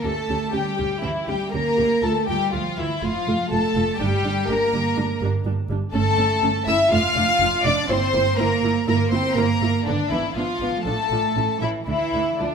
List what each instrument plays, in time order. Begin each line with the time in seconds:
0.03 double bass section D2, cello section A3, viola section C#4 G4, violin section A4 A5
0.28 double bass section D2, viola section C#4 G4
0.53 double bass section D2, cello section G3, viola section C#4 G4, violin section G4 G5
0.77 double bass section D2, viola section C#4 G4
1.02 double bass section D2, cello section E3, viola section C#4 G4, violin section E4 E5
1.27 double bass section D2, cello section G3, viola section C#4 G4, violin section G4 G5
1.52 double bass section D2, cello section A#3, viola section C#4 G4, violin section A#4 A#5
1.77 double bass section D2, viola section C#4 G4
2.02 double bass section D2, viola section A3 F4, cello section A3, violin section A4 A5
2.28 double bass section D2, cello section G3, viola section A3 F4, violin section G4 G5
2.52 double bass section D2, cello section F3, viola section A3 F4, violin section F4 F5
2.77 double bass section D2, cello section E3, viola section A3 F4, violin section E4 E5
3.02 double bass section F1, cello section F3, viola section A3 F4, violin section F4 F5
3.27 double bass section F1, viola section A3 F4
3.51 double bass section F1, cello section A3, viola section A3 F4, violin section A4 A5
3.76 double bass section F1, viola section A3 F4
3.99 double bass section G1, cello section G3, viola section G3 D4, violin section G4 G5
4.24 double bass section G1, viola section G3 D4
4.48 double bass section G1, viola section G3 D4, cello section A#3, violin section A#4 A#5
4.72 double bass section G1, viola section G3 D4
4.97 double bass section G1, viola section G3 D4
5.21 double bass section G1, viola section G3 D4
5.45 double bass section G1, viola section G3 D4
5.70 double bass section G1, viola section G3 D4
5.93 double bass section G1, cello section A3, viola section A3 C#4, violin section A4 A5
6.18 double bass section G1, viola section A3 C#4
6.42 double bass section G1, viola section A3 C#4
6.67 double bass section G1, viola section A3 C#4, cello section E4, violin section E5 E6
6.91 double bass section F1, viola section A3 D4, cello section F4, violin section F5 F6
7.16 double bass section F1, viola section A3 D4
7.40 double bass section F1, viola section A3 D4
7.64 double bass section F1, viola section A3 D4, cello section D4, violin section D5 D6
7.89 double bass section G1, viola section A#3 E4, cello section C4, violin section C5 C6
8.13 double bass section G1, viola section A#3 E4
8.38 double bass section G1, cello section A#3, viola section A#3 E4, violin section A#4 A#5
8.62 double bass section G1, viola section A#3 E4
8.87 double bass section G1, viola section A#3 E4, cello section A#3, violin section A#4 A#5
9.11 double bass section G1, viola section A#3 E4, cello section C4, violin section C5 C6
9.36 double bass section G1, cello section A#3, viola section A#3 E4, violin section A#4 A#5
9.61 double bass section G1, viola section A#3 E4
9.86 double bass section G#1, cello section D3, viola section B3 D4, violin section D4 D5
10.10 double bass section G#1, cello section E3, viola section B3 D4, violin section E4 E5
10.35 double bass section G#1, cello section F3, viola section B3 D4, violin section F4 F5
10.60 double bass section G#1, viola section B3 D4
10.84 double bass section A1, cello section A3, viola section D4 F4, violin section A4 A5
11.10 double bass section A1, viola section D4 F4
11.36 double bass section A1, viola section C#4 E4
11.61 double bass section A1, cello section E3, viola section C#4 E4, violin section E4 E5
11.87 double bass section D2, cello section E3, viola section A3 D4, violin section E4 E5
12.13 double bass section D2, viola section A3 D4
12.39 double bass section D2, cello section D3, viola section F3, violin section D4 D5